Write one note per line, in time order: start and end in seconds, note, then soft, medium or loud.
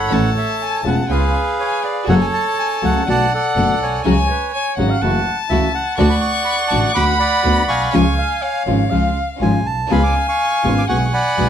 0.00 0.11 G1 soft
0.00 0.81 A4 medium
0.00 0.81 C#5 medium
0.00 0.33 F#5 medium
0.00 0.14 B5 medium
0.10 0.32 A1 medium
0.10 0.20 E3 medium
0.10 0.31 A3 medium
0.10 0.20 A3 medium
0.10 0.31 C#4 medium
0.10 0.20 C#4 medium
0.10 0.32 E4 medium
0.10 0.21 E4 medium
0.10 1.09 A5 medium
0.38 0.62 E5 medium
0.61 0.84 G#5 medium
0.83 1.05 E1 medium
0.83 1.01 C#3 medium
0.83 1.02 G#3 medium
0.83 1.05 A3 soft
0.83 1.02 B3 medium
0.83 1.05 C#4 soft
0.83 1.05 E4 soft
0.83 1.02 F4 medium
0.83 1.02 G#4 medium
0.83 1.11 F#5 medium
1.08 1.30 C#2 medium
1.08 1.30 B3 medium
1.08 1.30 C#4 medium
1.08 1.30 F4 medium
1.08 2.05 G#4 soft
1.08 2.06 B4 soft
1.08 1.81 F5 medium
1.08 1.56 G#5 medium
1.60 1.83 C#5 medium
1.60 1.85 G#5 medium
1.83 2.07 D5 medium
1.83 2.08 F5 medium
2.08 2.29 F#1 medium
2.08 2.18 C#3 medium
2.08 2.18 F#3 medium
2.08 2.29 A3 medium
2.08 2.18 A3 medium
2.08 2.18 C#4 medium
2.08 2.29 F#4 medium
2.08 2.29 G#4 medium
2.08 2.18 G#4 medium
2.08 3.04 A4 medium
2.08 3.04 C#5 medium
2.08 2.14 F#5 medium
2.08 3.09 A5 medium
2.21 2.27 G#5 medium
2.34 2.45 A5 medium
2.59 2.82 G#5 medium
2.82 3.04 C#2 medium
2.82 3.00 C#3 medium
2.82 3.00 F#3 medium
2.82 3.03 A3 soft
2.82 3.00 A3 medium
2.82 3.00 C#4 medium
2.82 3.03 F#4 soft
2.82 3.04 G#4 soft
2.82 3.01 G#4 medium
2.82 3.08 F#5 medium
3.06 3.28 B1 medium
3.06 3.24 B2 medium
3.06 3.25 D3 medium
3.06 3.25 A3 medium
3.06 3.27 B3 soft
3.06 3.25 B3 medium
3.06 3.28 D4 soft
3.06 3.25 F#4 medium
3.06 3.28 A4 soft
3.06 3.33 D5 medium
3.06 4.04 F#5 medium
3.06 3.33 F#5 medium
3.06 3.32 A5 medium
3.34 4.02 A4 medium
3.34 4.02 D5 medium
3.34 3.79 F#5 medium
3.56 3.77 F#1 medium
3.56 3.73 B2 medium
3.56 3.73 D3 medium
3.56 3.74 A3 medium
3.56 3.77 B3 soft
3.56 3.74 B3 medium
3.56 3.77 D4 soft
3.56 3.74 F#4 medium
3.56 3.77 A4 soft
3.81 4.04 B1 soft
3.81 4.75 C#5 medium
3.81 4.27 G#5 medium
4.04 4.25 C#2 medium
4.04 4.14 C#3 medium
4.04 4.14 F#3 medium
4.04 4.25 G#3 medium
4.04 4.25 C#4 medium
4.04 4.14 C#4 medium
4.04 4.25 F#4 medium
4.04 4.15 F#4 medium
4.04 4.15 G#4 medium
4.04 4.50 G#5 medium
4.30 4.53 B4 medium
4.54 4.92 C#5 medium
4.54 4.76 G#5 medium
4.77 4.98 G#1 medium
4.77 4.94 C#3 medium
4.77 4.95 F#3 medium
4.77 4.98 G#3 soft
4.77 4.98 C#4 soft
4.77 4.95 C#4 medium
4.77 4.98 F#4 medium
4.77 4.95 F#4 medium
4.77 4.95 G#4 medium
4.77 5.04 F#5 medium
4.90 5.03 F5 medium
5.02 5.22 F#1 medium
5.02 5.19 C#3 medium
5.02 5.19 E3 medium
5.02 5.22 A3 soft
5.02 5.19 A3 medium
5.02 5.19 C#4 medium
5.02 5.22 E4 soft
5.02 5.23 F#4 medium
5.02 5.20 F#4 medium
5.02 5.38 F#5 medium
5.02 5.97 A5 medium
5.50 5.71 C#2 medium
5.50 5.67 C#3 medium
5.50 5.67 E3 medium
5.50 5.70 A3 soft
5.50 5.67 A3 medium
5.50 5.67 C#4 medium
5.50 5.70 E4 soft
5.50 5.70 F#4 medium
5.50 5.67 F#4 medium
5.50 5.72 E5 medium
5.74 5.97 F#5 medium
5.98 6.19 D2 medium
5.98 6.07 D3 medium
5.98 6.18 A3 medium
5.98 6.07 A3 medium
5.98 6.18 D4 medium
5.98 6.07 D4 medium
5.98 6.18 F#4 medium
5.98 6.07 F#4 medium
5.98 6.92 D5 medium
5.98 6.92 F#5 medium
5.98 6.09 A5 medium
5.98 6.97 C#6 loud
6.10 6.15 B5 medium
6.21 6.32 C#6 medium
6.45 6.56 B5 medium
6.68 6.92 A1 medium
6.68 6.88 D3 medium
6.68 6.91 A3 soft
6.68 6.88 A3 medium
6.68 6.92 D4 soft
6.68 6.92 F#4 medium
6.68 6.80 A5 medium
6.72 6.89 D4 medium
6.72 6.89 F#4 medium
6.93 7.16 D2 medium
6.93 7.13 D3 medium
6.93 7.16 B3 soft
6.93 7.13 B3 medium
6.93 7.16 D4 soft
6.93 7.13 D4 medium
6.93 7.16 F#4 medium
6.93 7.13 F#4 medium
6.93 7.18 F#5 medium
6.93 7.17 B5 medium
6.93 7.96 B5 loud
6.93 7.05 D6 loud
7.19 7.89 D5 medium
7.19 7.90 F#5 medium
7.19 7.70 B5 loud
7.44 7.65 D2 medium
7.44 7.61 D3 medium
7.44 7.65 B3 soft
7.44 7.62 B3 medium
7.44 7.65 D4 soft
7.44 7.62 D4 medium
7.44 7.65 F#4 medium
7.44 7.62 F#4 medium
7.68 7.93 B1 medium
7.68 8.63 F5 medium
7.68 8.63 G#5 medium
7.68 8.14 C#6 medium
7.92 8.14 C#2 medium
7.92 8.02 C#3 medium
7.92 8.03 F3 medium
7.92 8.14 G#3 medium
7.92 8.03 G#3 medium
7.92 8.14 C#4 medium
7.92 8.03 C#4 medium
7.92 8.14 F4 medium
7.92 8.03 F4 loud
7.92 8.44 G#5 medium
8.18 8.44 F5 medium
8.42 8.92 C#5 medium
8.42 9.66 F5 medium
8.66 8.88 G#1 medium
8.66 8.84 C#3 medium
8.66 8.84 F3 medium
8.66 8.87 G#3 soft
8.66 8.84 G#3 medium
8.66 8.87 C#4 soft
8.66 8.84 C#4 medium
8.66 8.87 F4 medium
8.66 8.84 F4 medium
8.90 9.12 C#2 medium
8.90 9.08 C#3 medium
8.90 9.08 F3 medium
8.90 9.12 G#3 soft
8.90 9.08 G#3 medium
8.90 9.12 C#4 soft
8.90 9.09 C#4 medium
8.90 9.12 F4 medium
8.90 9.09 F4 medium
8.90 9.28 F5 medium
9.40 9.62 G#1 medium
9.40 9.58 C#3 medium
9.40 9.59 F3 medium
9.40 9.61 G#3 soft
9.40 9.59 G#3 medium
9.40 9.62 C#4 soft
9.40 9.59 C#4 medium
9.40 9.62 F4 medium
9.40 9.59 F4 medium
9.40 9.67 G#5 medium
9.65 9.91 B1 soft
9.65 9.92 A5 medium
9.89 10.12 C#2 medium
9.89 10.00 C#3 medium
9.89 10.00 G#3 medium
9.89 10.11 B3 medium
9.89 10.00 B3 medium
9.89 10.11 C#4 medium
9.89 10.11 F4 medium
9.89 10.00 F4 medium
9.89 10.00 G#4 medium
9.89 10.27 F5 medium
9.89 10.89 G#5 medium
9.89 10.27 G#5 medium
9.89 10.03 B5 medium
10.03 10.14 D6 medium
10.28 10.86 F5 medium
10.28 10.85 G#5 medium
10.28 10.74 C#6 medium
10.63 10.86 G#1 medium
10.63 10.81 C#3 medium
10.63 10.81 G#3 medium
10.63 10.85 B3 soft
10.63 10.82 B3 medium
10.63 10.85 C#4 soft
10.63 10.85 F4 medium
10.63 10.82 F4 medium
10.63 10.82 G#4 medium
10.78 10.83 D6 medium
10.88 11.10 B1 medium
10.88 11.06 B2 medium
10.88 11.06 D3 medium
10.88 11.06 G#3 medium
10.88 11.09 B3 soft
10.88 11.06 B3 medium
10.88 11.09 F#4 soft
10.88 11.06 F#4 medium
10.88 11.10 G#4 medium
10.88 11.49 F#5 medium
10.88 11.12 F#5 medium
10.88 11.49 G#5 medium
10.88 10.97 C#6 medium
11.05 11.13 C#6 medium
11.14 11.49 D5 medium
11.14 11.49 F#5 medium
11.14 11.49 B5 loud
11.37 11.49 B1 medium
11.37 11.49 B2 medium
11.37 11.49 D3 medium
11.37 11.49 G#3 medium
11.37 11.49 B3 soft
11.37 11.49 B3 medium
11.37 11.49 F#4 soft
11.37 11.49 F#4 medium
11.37 11.49 G#4 medium